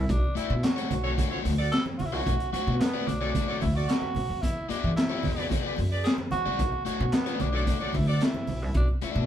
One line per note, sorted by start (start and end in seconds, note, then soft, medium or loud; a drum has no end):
0.00 0.12 E4 medium
0.09 0.21 B1 medium
0.09 0.36 D4 loud
0.09 kick loud
0.09 closed hi-hat medium
0.24 muted conga soft
0.35 0.51 A3 medium
0.35 0.52 D4 medium
0.35 0.65 E4 medium
0.35 0.52 F#4 medium
0.35 0.52 D5 medium
0.35 muted upright bass stroke soft
0.35 closed hi-hat medium
0.50 0.61 B2 loud
0.64 1.45 F#4 medium
0.64 snare loud
0.64 clap medium
0.64 closed hi-hat medium
0.64 muted conga soft
0.64 high conga medium
0.76 0.93 A3 medium
0.76 0.93 D4 medium
0.76 0.93 F#4 medium
0.76 0.92 C#5 medium
0.76 closed hi-hat medium
0.76 muted conga soft
0.91 1.13 B1 medium
0.91 closed hi-hat medium
0.91 low conga medium
1.03 1.16 A3 medium
1.03 1.17 D4 medium
1.03 1.12 F#4 medium
1.03 1.17 F#4 soft
1.03 1.12 A4 medium
1.03 1.13 C#5 medium
1.03 1.16 C#5 medium
1.17 1.30 A3 medium
1.17 1.30 D4 medium
1.17 1.30 F#4 medium
1.17 1.30 C#5 medium
1.17 kick loud
1.17 closed hi-hat loud
1.17 low conga medium
1.31 1.52 A3 medium
1.31 1.52 D4 medium
1.31 1.39 F#4 medium
1.31 1.52 F#4 medium
1.31 1.39 A4 medium
1.31 1.40 C#5 medium
1.31 1.52 C#5 medium
1.31 muted conga soft
1.45 1.67 D2 medium
1.45 open hi-hat medium
1.45 high conga medium
1.58 1.76 F#4 medium
1.58 1.76 A4 medium
1.58 1.76 D5 loud
1.72 1.84 A4 loud
1.72 snare loud
1.72 clap medium
1.72 closed hi-hat medium
1.86 high conga medium
1.98 2.13 B1 medium
1.98 2.07 F#4 loud
1.98 open hi-hat medium
1.98 low conga medium
2.06 2.15 E4 medium
2.13 2.24 C2 medium
2.13 2.33 A3 medium
2.13 2.33 D4 medium
2.13 2.33 F#4 medium
2.13 2.52 F#4 loud
2.13 2.33 C#5 medium
2.26 2.38 B1 medium
2.26 kick loud
2.26 closed hi-hat medium
2.26 muted conga soft
2.40 closed hi-hat soft
2.40 muted conga soft
2.53 2.73 A3 medium
2.53 2.73 D4 medium
2.53 2.82 F#4 loud
2.53 2.73 F#4 medium
2.53 2.74 C#5 medium
2.53 muted upright bass stroke soft
2.53 closed hi-hat medium
2.67 2.78 B2 loud
2.81 3.09 B3 loud
2.81 snare loud
2.81 clap medium
2.81 closed hi-hat medium
2.81 high conga medium
2.94 3.10 A3 medium
2.94 3.10 D4 medium
2.94 3.10 F#4 medium
2.94 3.09 D5 loud
2.94 muted conga soft
3.07 3.30 B1 medium
3.07 3.61 D4 loud
3.07 closed hi-hat medium
3.07 low conga medium
3.21 3.34 A3 medium
3.21 3.33 D4 medium
3.21 3.33 F#4 medium
3.21 3.30 F#4 medium
3.21 3.30 A4 medium
3.21 3.33 C#5 medium
3.21 3.30 D5 medium
3.35 3.47 A3 medium
3.35 3.47 D4 medium
3.35 3.47 F#4 medium
3.35 3.47 D5 medium
3.35 kick loud
3.35 closed hi-hat medium
3.35 low conga medium
3.48 3.64 A3 medium
3.48 3.64 D4 medium
3.48 3.64 F#4 medium
3.48 3.57 F#4 medium
3.48 3.57 A4 medium
3.48 3.63 C#5 medium
3.48 3.57 D5 medium
3.61 3.84 D2 medium
3.61 3.77 E4 medium
3.61 kick loud
3.61 open hi-hat medium
3.61 high conga medium
3.75 3.87 F#4 medium
3.75 4.10 F#4 medium
3.75 4.10 A4 medium
3.75 4.10 D5 loud
3.88 4.43 F#4 loud
3.88 snare loud
3.88 clap medium
3.88 closed hi-hat medium
3.88 muted conga soft
4.02 muted conga soft
4.02 high conga medium
4.15 4.27 B1 medium
4.15 open hi-hat medium
4.15 low conga medium
4.30 4.41 F2 medium
4.42 4.54 E2 medium
4.42 4.71 E4 loud
4.42 kick loud
4.42 closed hi-hat medium
4.42 muted conga soft
4.69 4.89 B3 medium
4.69 4.96 D4 medium
4.69 4.90 F#4 medium
4.69 4.90 G#4 medium
4.69 4.90 E5 medium
4.69 muted upright bass stroke soft
4.69 closed hi-hat medium
4.84 4.95 E3 medium
4.96 5.74 E4 loud
4.96 snare loud
4.96 clap medium
4.96 closed hi-hat medium
4.96 high conga medium
5.10 5.31 B3 medium
5.10 5.31 F#4 medium
5.10 5.30 G#4 medium
5.10 5.30 D5 medium
5.10 muted conga soft
5.23 5.46 E2 medium
5.23 kick medium
5.23 open hi-hat medium
5.23 low conga medium
5.37 5.48 B3 soft
5.37 5.49 F#4 soft
5.37 5.49 G#4 medium
5.37 5.46 G#4 medium
5.37 5.46 B4 medium
5.37 5.49 D5 medium
5.37 5.46 D5 medium
5.49 5.62 B3 medium
5.49 5.63 F#4 medium
5.49 5.63 G#4 medium
5.49 5.61 D5 medium
5.49 kick loud
5.49 closed hi-hat loud
5.49 low conga medium
5.63 5.80 B3 medium
5.63 5.80 F#4 medium
5.63 5.79 G#4 medium
5.63 5.74 G#4 medium
5.63 5.74 B4 medium
5.63 5.79 D5 medium
5.63 5.74 D5 medium
5.77 6.00 F#2 medium
5.77 open hi-hat medium
5.77 high conga medium
5.92 6.26 G#4 loud
5.92 6.26 B4 medium
5.92 6.26 D5 loud
6.04 6.16 G#4 medium
6.04 snare loud
6.04 clap medium
6.04 closed hi-hat medium
6.04 muted conga soft
6.18 muted conga soft
6.18 high conga medium
6.31 6.43 E2 medium
6.31 6.82 F#4 loud
6.31 closed hi-hat medium
6.31 low conga medium
6.46 6.57 C2 medium
6.46 6.62 B3 medium
6.46 6.61 F#4 medium
6.46 6.61 G#4 medium
6.46 6.61 D5 medium
6.59 6.70 B1 medium
6.59 kick loud
6.59 closed hi-hat medium
6.73 muted conga soft
6.85 7.01 A3 medium
6.85 7.01 D4 medium
6.85 7.01 F#4 medium
6.85 7.15 F#4 medium
6.85 7.02 C#5 loud
6.85 muted upright bass stroke soft
6.85 closed hi-hat medium
7.00 7.11 B2 loud
7.12 7.42 B3 loud
7.12 snare loud
7.12 clap medium
7.12 closed hi-hat medium
7.12 muted conga soft
7.12 high conga medium
7.26 7.48 A3 medium
7.26 7.47 D4 medium
7.26 7.47 F#4 medium
7.26 7.46 D5 medium
7.26 closed hi-hat medium
7.40 7.63 B1 medium
7.40 7.97 D4 loud
7.40 closed hi-hat medium
7.40 low conga medium
7.53 7.65 A3 medium
7.53 7.66 D4 soft
7.53 7.65 F#4 medium
7.53 7.63 F#4 medium
7.53 7.63 A4 medium
7.53 7.65 C#5 medium
7.53 7.63 D5 loud
7.66 7.79 A3 medium
7.66 7.79 D4 medium
7.66 7.79 F#4 medium
7.66 7.80 D5 medium
7.66 kick loud
7.66 closed hi-hat medium
7.66 low conga medium
7.80 7.97 A3 medium
7.80 7.97 D4 medium
7.80 7.90 F#4 medium
7.80 7.96 F#4 medium
7.80 7.90 A4 medium
7.80 7.96 C#5 medium
7.80 7.90 D5 medium
7.80 muted conga soft
7.93 8.17 D2 loud
7.93 8.10 E4 medium
7.93 kick medium
7.93 open hi-hat medium
7.93 high conga medium
8.08 8.23 D4 medium
8.08 8.25 F#4 medium
8.08 8.25 A4 medium
8.08 8.25 D5 loud
8.20 8.76 E4 loud
8.20 snare loud
8.20 clap medium
8.20 closed hi-hat medium
8.20 muted conga soft
8.34 muted conga soft
8.34 high conga medium
8.47 8.62 B1 medium
8.47 open hi-hat medium
8.47 low conga medium
8.62 8.73 C2 medium
8.74 8.86 B1 medium
8.74 8.89 D4 medium
8.74 kick loud
8.74 closed hi-hat medium
8.74 muted conga soft
8.88 muted conga soft
9.02 9.22 A3 medium
9.02 9.22 D4 medium
9.02 9.26 E4 medium
9.02 9.22 F#4 medium
9.02 9.23 D5 medium
9.02 muted upright bass stroke soft
9.02 closed hi-hat medium
9.16 9.26 B2 loud